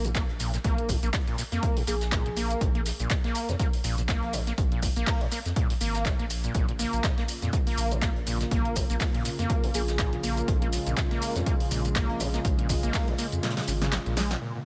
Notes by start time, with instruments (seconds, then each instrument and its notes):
Already playing: sub bass A#1
0.05 acid bass G#2, closed hi-hat, shaker
0.15 acid bass A#3, kick, snare, clap, closed hi-hat, shaker
0.29 sub bass A#1, closed hi-hat
0.39 acid bass A#2, closed hi-hat, open hi-hat, shaker
0.53 acid bass A#2, snare, closed hi-hat, shaker
0.64 sub bass A#1, acid bass A#3, kick, closed hi-hat, shaker
0.78 closed hi-hat
0.88 acid bass G#2, kick, closed hi-hat, open hi-hat, shaker
1.03 sub bass A#1, acid bass A#3, closed hi-hat, shaker
1.13 kick, snare, clap, closed hi-hat, open hi-hat, shaker
1.28 acid bass A#2, closed hi-hat
1.38 acid bass A#2, snare, closed hi-hat, open hi-hat, shaker
1.51 sub bass F2, acid bass A#3, snare, closed hi-hat, shaker
1.63 kick, closed hi-hat, shaker
1.77 acid bass G#2, open hi-hat
1.87 sub bass A#1, acid bass A#3, digital synth lead G#4, closed hi-hat, open hi-hat, shaker
2.01 snare, closed hi-hat, shaker
2.12 acid bass A#2, kick, snare, clap, closed hi-hat, shaker
2.26 sub bass A#1, acid bass A#2, closed hi-hat
2.36 acid bass A#3, closed hi-hat, open hi-hat, shaker
2.51 closed hi-hat, shaker
2.61 sub bass A#1, acid bass G#2, kick, closed hi-hat, shaker
2.75 acid bass A#3, closed hi-hat
2.86 snare, closed hi-hat, open hi-hat, shaker
3.00 sub bass A#1, acid bass A#2, closed hi-hat, shaker
3.10 acid bass A#2, kick, snare, clap, closed hi-hat, shaker
3.24 acid bass A#3, snare, closed hi-hat
3.35 closed hi-hat, open hi-hat, shaker
3.49 sub bass F2, acid bass G#2, snare, closed hi-hat, shaker
3.59 acid bass A#3, kick, closed hi-hat, shaker
3.73 open hi-hat
3.84 sub bass A#1, acid bass A#2, closed hi-hat, open hi-hat, shaker
3.98 acid bass A#2, closed hi-hat, shaker
4.08 acid bass A#3, kick, snare, clap, closed hi-hat, shaker
4.22 sub bass A#1, closed hi-hat
4.33 acid bass G#2, closed hi-hat, open hi-hat, shaker
4.47 acid bass A#3, snare, closed hi-hat, shaker
4.58 sub bass A#1, kick, closed hi-hat, shaker
4.72 acid bass A#2, closed hi-hat
4.82 acid bass A#2, kick, closed hi-hat, open hi-hat, shaker
4.96 sub bass A#1, acid bass A#3, closed hi-hat, shaker
5.07 kick, snare, clap, closed hi-hat, open hi-hat, shaker
5.21 acid bass G#2, closed hi-hat
5.31 acid bass A#3, snare, closed hi-hat, open hi-hat, shaker
5.46 sub bass F2, snare, closed hi-hat, shaker
5.56 acid bass A#2, kick, closed hi-hat, shaker
5.70 acid bass A#2, open hi-hat
5.81 sub bass G#1, acid bass A#3, closed hi-hat, open hi-hat, shaker
5.94 snare, closed hi-hat, shaker
6.05 acid bass G#2, kick, snare, clap, closed hi-hat, shaker
6.19 sub bass A#1, acid bass A#3, closed hi-hat
6.30 closed hi-hat, open hi-hat, shaker
6.44 acid bass A#2, closed hi-hat, shaker
6.54 sub bass A#1, analog synth pad C#3 A#3 F4, kick, closed hi-hat, shaker
6.69 acid bass A#2, closed hi-hat
6.79 acid bass A#3, snare, closed hi-hat, open hi-hat, shaker
6.93 sub bass A#1, closed hi-hat, shaker
7.04 acid bass G#2, kick, snare, clap, closed hi-hat, shaker
7.18 acid bass A#3, snare, closed hi-hat
7.28 closed hi-hat, open hi-hat, shaker
7.42 sub bass F2, acid bass A#2, snare, closed hi-hat, shaker
7.53 acid bass A#2, kick, closed hi-hat, shaker
7.67 acid bass A#3, open hi-hat
7.78 sub bass A#1, closed hi-hat, open hi-hat, shaker
7.91 acid bass G#2, closed hi-hat, shaker
8.02 acid bass A#3, kick, snare, clap, closed hi-hat, shaker
8.16 sub bass A#1, closed hi-hat
8.27 acid bass A#2, closed hi-hat, open hi-hat, shaker
8.41 acid bass A#2, snare, closed hi-hat, shaker
8.51 sub bass A#1, acid bass A#3, kick, closed hi-hat, shaker
8.65 closed hi-hat
8.75 acid bass G#2, kick, closed hi-hat, open hi-hat, shaker
8.90 sub bass A#1, acid bass A#3, closed hi-hat, shaker
9.00 kick, snare, clap, closed hi-hat, open hi-hat, shaker
9.14 acid bass A#2, closed hi-hat
9.24 acid bass A#2, snare, closed hi-hat, open hi-hat, shaker
9.38 sub bass F2, acid bass A#3, snare, closed hi-hat, shaker
9.49 kick, closed hi-hat, shaker
9.64 acid bass G#2, open hi-hat
9.74 sub bass A#1, acid bass A#3, digital synth lead G#4, closed hi-hat, open hi-hat, shaker
9.88 snare, closed hi-hat, shaker
9.99 acid bass A#2, kick, snare, clap, closed hi-hat, shaker
10.13 sub bass A#1, acid bass A#2, closed hi-hat
10.23 acid bass A#3, closed hi-hat, open hi-hat, shaker
10.37 closed hi-hat, shaker
10.48 sub bass A#1, acid bass G#2, analog synth pad G#3, kick, closed hi-hat, shaker
10.62 acid bass A#3, closed hi-hat
10.72 snare, closed hi-hat, open hi-hat, shaker
10.86 sub bass A#1, acid bass A#2, closed hi-hat, shaker
10.97 acid bass A#2, kick, snare, clap, closed hi-hat, shaker
11.11 acid bass A#3, snare, closed hi-hat
11.22 closed hi-hat, open hi-hat, shaker
11.36 sub bass F2, acid bass G#2, snare, closed hi-hat, shaker
11.46 acid bass A#3, kick, closed hi-hat, shaker
11.60 open hi-hat
11.71 sub bass A#1, acid bass A#2, closed hi-hat, open hi-hat, shaker
11.85 acid bass A#2, closed hi-hat, shaker
11.95 acid bass A#3, kick, snare, clap, closed hi-hat, shaker
12.09 sub bass A#1, closed hi-hat
12.20 acid bass G#2, closed hi-hat, open hi-hat, shaker
12.34 acid bass A#3, snare, closed hi-hat, shaker
12.45 sub bass A#1, kick, closed hi-hat, shaker
12.59 acid bass A#2, closed hi-hat
12.69 acid bass A#2, kick, closed hi-hat, open hi-hat, shaker
12.83 sub bass A#1, acid bass A#3, closed hi-hat, shaker
12.94 kick, snare, clap, closed hi-hat, open hi-hat, shaker
13.08 acid bass G#2, closed hi-hat
13.18 acid bass A#3, snare, closed hi-hat, open hi-hat, shaker
13.32 sub bass F2, closed hi-hat, shaker
13.43 acid bass A#2, snare, closed hi-hat, shaker
13.50 snare, closed hi-hat
13.57 acid bass A#2, snare, closed hi-hat, open hi-hat
13.62 snare, closed hi-hat
13.68 sub bass G#1, acid bass C#3, closed hi-hat, open hi-hat, shaker
13.82 acid bass C#3, snare, closed hi-hat, shaker
13.92 acid bass A#1, snare, clap, closed hi-hat, shaker
14.06 sub bass A#1, acid bass A#2, closed hi-hat
14.17 acid bass G#3, snare, closed hi-hat, open hi-hat, shaker
14.30 acid bass A#2, snare, closed hi-hat, shaker
14.41 acid bass A#2, analog synth pad C#3 A#3 F4, closed hi-hat
14.55 acid bass A#2, closed hi-hat